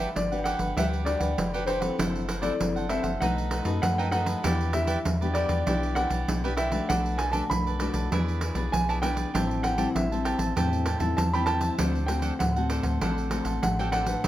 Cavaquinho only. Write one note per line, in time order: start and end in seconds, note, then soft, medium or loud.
0.32 0.44 G4 soft
0.32 0.45 B4 soft
0.32 0.45 F#5 soft
0.45 0.60 D4 medium
0.45 0.59 G4 medium
0.45 0.59 B4 medium
0.45 0.58 F#5 medium
0.59 0.75 G4 soft
0.59 0.75 B4 soft
0.59 0.74 F#5 soft
0.77 1.04 D4 medium
0.77 1.05 G4 medium
0.77 1.06 B4 medium
0.77 1.06 F#5 medium
1.06 1.21 D4 soft
1.06 1.20 G4 soft
1.06 1.19 B4 soft
1.06 1.18 F#5 soft
1.20 1.51 G4 soft
1.20 1.51 B4 soft
1.20 1.51 F#5 soft
1.54 1.63 D4 medium
1.54 1.63 G4 medium
1.54 1.63 B4 medium
1.54 1.63 F#5 medium
1.66 1.82 D4 medium
1.66 1.81 G4 medium
1.66 1.80 B4 medium
1.66 1.79 F#5 medium
1.80 1.97 G4 soft
1.80 1.97 B4 soft
1.80 1.96 F#5 soft
1.98 2.27 E4 medium
1.98 2.27 A4 medium
1.98 2.28 C5 medium
1.98 2.28 F#5 medium
2.28 2.41 E4 soft
2.28 2.41 A4 soft
2.28 2.41 C5 soft
2.28 2.41 F#5 medium
2.42 2.53 E4 medium
2.42 2.53 A4 medium
2.42 2.53 C5 medium
2.42 2.53 F#5 medium
2.76 2.88 A4 soft
2.76 2.89 C5 soft
2.76 2.89 F#5 soft
2.89 3.04 E4 medium
2.89 3.03 A4 medium
2.89 3.03 C5 medium
2.89 3.02 F#5 medium
3.03 3.20 A4 soft
3.03 3.19 C5 soft
3.03 3.19 F#5 soft
3.21 3.49 D#4 medium
3.21 3.50 A4 medium
3.21 3.50 B4 medium
3.21 3.51 D#5 medium
3.51 3.66 D#4 soft
3.51 3.65 A4 soft
3.51 3.64 B4 soft
3.51 3.63 D#5 soft
3.65 3.96 A4 soft
3.65 3.96 B4 soft
3.65 3.96 D#5 soft
3.98 4.07 D#4 medium
3.98 4.08 A4 medium
3.98 4.08 B4 medium
3.98 4.08 D#5 medium
4.11 4.27 D#4 medium
4.11 4.26 A4 medium
4.11 4.26 B4 medium
4.11 4.25 D#5 medium
4.26 4.42 A4 soft
4.26 4.42 B4 soft
4.26 4.42 D#5 soft
4.43 4.71 E4 medium
4.43 4.72 G4 medium
4.43 4.72 B4 medium
4.43 4.73 D5 medium
4.73 4.86 E4 soft
4.73 4.86 G4 soft
4.73 4.86 B4 soft
4.73 4.87 D5 medium
4.87 4.98 E4 medium
4.87 4.98 G4 medium
4.87 4.98 B4 medium
4.87 4.98 D5 medium
5.21 5.34 G4 soft
5.21 5.34 B4 soft
5.21 5.35 D5 soft
5.34 5.49 E4 medium
5.34 5.49 G4 medium
5.34 5.48 B4 medium
5.34 5.47 D5 medium
5.48 5.65 G4 soft
5.48 5.64 B4 soft
5.48 5.64 D5 soft
5.66 5.94 E4 medium
5.66 5.95 G4 medium
5.66 5.95 B4 medium
5.66 5.96 D5 medium
5.95 6.10 E4 soft
5.95 6.10 G4 soft
5.95 6.09 B4 medium
5.95 6.08 D5 medium
6.09 6.41 G4 soft
6.09 6.41 B4 soft
6.09 6.40 D5 soft
6.44 6.53 E4 medium
6.44 6.53 G4 medium
6.44 6.53 B4 medium
6.44 6.53 D5 medium
6.57 6.72 E4 medium
6.57 6.71 G4 medium
6.57 6.71 B4 medium
6.57 6.70 D5 medium
6.71 6.87 G4 soft
6.71 6.87 B4 soft
6.71 6.87 D5 soft
6.89 7.17 D4 medium
6.89 7.18 A4 medium
6.89 7.19 B4 medium
6.89 7.19 D5 medium
7.18 7.31 D4 soft
7.18 7.32 A4 soft
7.18 7.32 B4 soft
7.18 7.32 D5 soft
7.32 7.43 D4 medium
7.32 7.43 A4 medium
7.32 7.43 B4 medium
7.32 7.43 D5 medium
7.66 7.79 A4 soft
7.66 7.79 B4 soft
7.66 7.80 D5 soft
7.79 7.94 D4 medium
7.79 7.94 A4 medium
7.79 7.93 B4 medium
7.79 7.92 D5 medium
7.93 8.10 A4 soft
7.93 8.10 B4 soft
7.93 8.09 D5 soft
8.12 8.39 E4 medium
8.12 8.40 G#4 medium
8.12 8.40 B4 medium
8.12 8.41 D5 medium
8.41 8.56 E4 soft
8.41 8.55 G#4 soft
8.41 8.54 B4 medium
8.41 8.53 D5 soft
8.55 8.86 G#4 soft
8.55 8.86 B4 soft
8.55 8.86 D5 soft
8.89 8.98 E4 medium
8.89 8.98 G#4 medium
8.89 8.98 B4 medium
8.89 8.98 D5 medium
9.02 9.17 E4 medium
9.02 9.16 G#4 medium
9.02 9.15 B4 medium
9.02 9.15 D5 medium
9.16 9.32 G#4 soft
9.16 9.32 B4 soft
9.16 9.32 D5 medium
9.34 9.62 G4 medium
9.34 9.62 C5 medium
9.34 9.63 E5 medium
9.34 9.63 A5 medium
9.63 9.76 G4 soft
9.63 9.77 C5 soft
9.63 9.77 E5 soft
9.63 9.77 A5 soft
9.78 9.88 G4 medium
9.78 9.88 C5 medium
9.78 9.88 E5 medium
9.78 9.88 A5 medium
10.12 10.24 C5 soft
10.12 10.25 E5 soft
10.12 10.25 A5 soft
10.25 10.40 G4 medium
10.25 10.39 C5 medium
10.25 10.38 E5 medium
10.25 10.37 A5 medium
10.38 10.55 C5 soft
10.38 10.54 E5 soft
10.38 10.54 A5 soft
10.56 10.84 G4 medium
10.56 10.85 C5 medium
10.56 10.85 E5 medium
10.56 10.86 A5 medium
10.85 11.01 G4 soft
10.85 11.00 C5 soft
10.85 10.99 E5 soft
10.85 10.98 A5 soft
10.99 11.31 C5 soft
10.99 11.31 E5 soft
10.99 11.31 A5 soft
11.34 11.43 G4 medium
11.34 11.43 C5 medium
11.34 11.43 E5 medium
11.34 11.43 A5 medium
11.47 11.62 G4 medium
11.47 11.61 C5 medium
11.47 11.60 E5 medium
11.47 11.60 A5 medium
11.61 11.77 C5 soft
11.61 11.77 E5 soft
11.61 11.77 A5 soft
11.78 12.07 D4 medium
11.78 12.07 A4 medium
11.78 12.08 C5 medium
11.78 12.08 F#5 medium
12.08 12.21 D4 soft
12.08 12.21 A4 soft
12.08 12.21 C5 medium
12.08 12.22 F#5 soft
12.22 12.33 D4 medium
12.22 12.33 A4 medium
12.22 12.33 C5 medium
12.22 12.33 F#5 medium
12.56 12.69 A4 soft
12.56 12.69 C5 soft
12.56 12.70 F#5 soft
12.70 12.85 D4 medium
12.70 12.84 A4 medium
12.70 12.83 C5 medium
12.70 12.82 F#5 medium
12.84 13.00 A4 soft
12.84 13.00 C5 soft
12.84 12.99 F#5 soft
13.01 13.29 D4 medium
13.01 13.30 A4 medium
13.01 13.30 C5 medium
13.01 13.31 F#5 medium
13.31 13.46 D4 soft
13.31 13.45 A4 medium
13.31 13.44 C5 medium
13.31 13.43 F#5 medium
13.45 13.77 A4 soft
13.45 13.76 C5 soft
13.45 13.76 F#5 soft
13.79 13.88 D4 medium
13.79 13.88 A4 medium
13.79 13.88 C5 medium
13.79 13.89 F#5 medium
13.92 14.07 D4 medium
13.92 14.07 A4 medium
13.92 14.06 C5 medium
13.92 14.05 F#5 medium
14.06 14.23 A4 soft
14.06 14.22 C5 soft
14.06 14.22 F#5 soft
14.25 14.28 D4 medium